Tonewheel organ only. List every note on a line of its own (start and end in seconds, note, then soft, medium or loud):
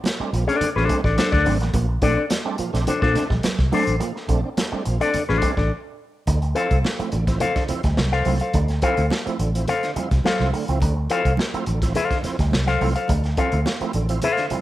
0.19 0.30 A3 medium
0.19 0.31 C4 medium
0.19 0.31 D4 medium
0.33 0.45 A#2 medium
0.33 0.45 F3 medium
0.47 0.59 A3 medium
0.47 0.59 C4 medium
0.47 0.59 D4 medium
0.61 0.67 C4 soft
0.61 0.67 D4 soft
0.76 0.87 A#2 soft
0.76 0.87 F3 medium
0.88 1.01 A3 medium
0.88 1.01 C4 medium
0.88 1.01 D4 medium
1.45 1.58 A3 medium
1.45 1.58 C4 medium
1.45 1.58 D4 medium
1.74 1.86 A#2 medium
1.74 1.86 F3 medium
2.02 2.14 A3 medium
2.02 2.15 C4 medium
2.02 2.15 D4 loud
2.17 2.23 C4 soft
2.17 2.23 D4 medium
2.45 2.56 A3 medium
2.45 2.56 C4 medium
2.45 2.57 D4 medium
2.59 2.71 A#2 medium
2.59 2.71 F3 medium
2.73 2.84 A3 medium
2.73 2.85 C4 medium
2.73 2.85 D4 medium
2.88 2.94 C4 soft
2.88 2.94 D4 medium
3.02 3.13 A#2 medium
3.02 3.13 F3 medium
3.15 3.28 A3 medium
3.15 3.28 C4 medium
3.15 3.28 D4 medium
3.71 3.84 A3 medium
3.71 3.84 C4 medium
3.71 3.85 D4 medium
4.01 4.13 A#2 medium
4.01 4.13 F3 medium
4.28 4.41 A3 loud
4.28 4.41 C4 medium
4.28 4.41 D4 loud
4.44 4.50 C4 soft
4.44 4.49 D4 soft
4.72 4.83 A3 medium
4.72 4.83 C4 medium
4.72 4.83 D4 medium
4.86 4.98 A#2 medium
4.86 4.98 F3 medium
5.00 5.11 A3 medium
5.00 5.12 C4 medium
5.00 5.12 D4 medium
5.14 5.20 C4 soft
5.14 5.20 D4 soft
5.29 5.40 A#2 medium
5.29 5.40 F3 medium
5.42 5.55 A3 medium
5.42 5.55 C4 medium
5.42 5.55 D4 medium
6.28 6.40 D3 medium
6.55 6.68 F3 medium
6.55 6.68 C4 medium
6.55 6.68 E4 medium
6.71 6.76 C4 soft
6.71 6.76 E4 soft
6.99 7.10 F3 medium
6.99 7.10 C4 medium
6.99 7.10 E4 medium
7.13 7.25 D3 medium
7.28 7.39 F3 medium
7.28 7.39 C4 medium
7.28 7.39 E4 medium
7.41 7.47 C4 soft
7.41 7.47 E4 soft
7.56 7.67 D3 medium
7.69 7.81 F3 medium
7.69 7.81 C4 medium
7.69 7.81 E4 medium
8.25 8.38 F3 medium
8.25 8.38 C4 medium
8.25 8.38 E4 medium
8.54 8.67 D3 medium
8.82 8.95 F3 medium
8.82 8.95 C4 medium
8.82 8.95 E4 loud
8.98 9.03 C4 soft
8.98 9.03 E4 soft
9.26 9.37 F3 medium
9.26 9.37 C4 medium
9.26 9.38 E4 medium
9.40 9.52 D3 medium
9.55 9.66 F3 medium
9.55 9.66 C4 medium
9.55 9.66 E4 medium
9.69 9.75 C4 soft
9.69 9.75 E4 soft
9.83 9.94 D3 soft
9.96 10.09 F3 medium
9.96 10.09 C4 medium
9.96 10.09 E4 medium
10.40 10.51 F3 medium
10.40 10.51 C4 medium
10.40 10.51 E4 medium
10.53 10.66 D3 medium
10.68 10.79 F3 medium
10.68 10.79 C4 medium
10.68 10.79 E4 medium
10.82 10.94 D3 medium
11.10 11.22 F3 medium
11.10 11.23 C4 medium
11.10 11.23 E4 medium
11.26 11.31 C4 soft
11.26 11.31 E4 medium
11.54 11.65 F3 medium
11.54 11.65 C4 medium
11.54 11.65 E4 medium
11.68 11.80 D3 medium
11.83 11.93 F3 medium
11.83 11.93 C4 medium
11.83 11.93 E4 medium
11.95 12.02 C4 soft
11.95 12.02 E4 soft
12.11 12.22 D3 medium
12.25 12.36 F3 medium
12.25 12.37 C4 medium
12.25 12.37 E4 medium
12.82 12.93 F3 medium
12.82 12.93 C4 medium
12.82 12.94 E4 medium
13.10 13.22 D3 medium
13.38 13.50 F3 medium
13.38 13.50 C4 medium
13.38 13.50 E4 medium
13.53 13.58 C4 soft
13.53 13.58 E4 soft
13.81 13.92 F3 medium
13.81 13.92 C4 medium
13.81 13.92 E4 medium
13.95 14.07 D3 medium
14.09 14.20 F3 medium
14.09 14.20 C4 medium
14.09 14.20 E4 medium
14.23 14.29 C4 soft
14.23 14.29 E4 soft
14.38 14.49 D3 medium
14.51 14.61 F3 medium
14.51 14.61 C4 medium
14.51 14.61 E4 medium